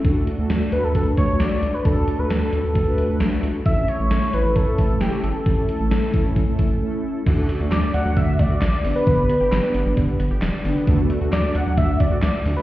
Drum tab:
CC |--------|--------|--------|--------|
HH |xxxxxxxx|xxxxxxxx|xxxxxxxx|xxxxxx--|
CP |--------|--------|--------|--------|
SD |--o---o-|--o---o-|--o---o-|--o-----|
BD |o---oo--|o---o---|o---oo--|o--ooo--|

CC |x-------|--------|--------|
HH |xxxxxxxo|xxxxxxxo|xxxxxxxo|
CP |--x---x-|--x---x-|--x---x-|
SD |--o---o-|--o---o-|--o---o-|
BD |o---oo--|o---o---|o---oo--|